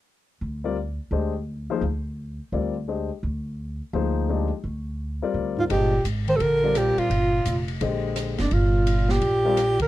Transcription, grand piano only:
X:1
M:4/4
L:1/8
Q:"Swing" 1/4=170
K:Gphr
V:1 name="Grand piano"
z3 [G,CFBd] z2 [A,DGce] z | z [F,B,EAc] z4 [G,CFBd] z | [A,DGce] z4 z [F,B,EAc]2 | [A,DGce] z4 [G,CFBd]3 |
[A,DGce] z4 [G,CFBd]3 | z4 [D,A,Gce]3 z | z4 z [G,CFBd] z2 |]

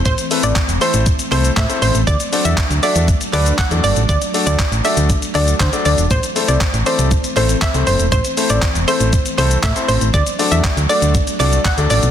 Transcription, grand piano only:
X:1
M:4/4
L:1/16
Q:1/4=119
K:Ador
V:1 name="Grand piano"
z2 [A,CEAB]2 z2 [A,CEAc]2 z2 [A,CEAc] z2 [A,CEAc]2 z | z2 [A,DFAd]2 z2 [A,DFAe]2 z2 [A,DFAB] z2 [A,DFAd]2 z | z2 [A,DFAd]2 z2 [A,DFAd]2 z2 [A,DFAd] z2 [A,DFAd]2 z | z2 [A,CEAc]2 z2 [A,CEAd]2 z2 [A,CEAc] z2 [A,CEAc]2 z |
z2 [A,CEAc]2 z2 [A,CEAc]2 z2 [A,CEAc] z2 [A,CEAc]2 z | z2 [A,DFAd]2 z2 [A,DFAd]2 z2 [A,DFAd] z2 [A,DFAd]2 z |]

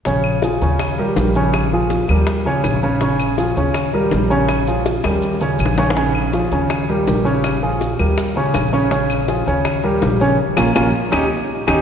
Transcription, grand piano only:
X:1
M:4/4
L:1/8
Q:1/4=163
K:Bbdor
V:1 name="Grand piano"
[D,Dd]2 [F,FA] [D,Dd]2 [G,GB] [G,GB] [D,Dd]- | [D,Dd] [F,FA]2 [G,GB]2 [D,Dd]2 [D,Dd] | [D,Dd]2 [F,FA] [D,Dd]2 [G,GB] [G,GB] [D,Dd]- | [D,Dd] [F,FA]2 [G,GB]2 [D,Dd]2 [D,Dd] |
[D,Dd]2 [F,FA] [D,Dd]2 [G,GB] [G,GB] [D,Dd]- | [D,Dd] [F,FA]2 [G,GB]2 [D,Dd]2 [D,Dd] | [D,Dd]2 [F,FA] [D,Dd]2 [G,GB] [G,GB] [D,Dd] | z [B,DF] [B,DF] z [DEG] z2 [DEG] |]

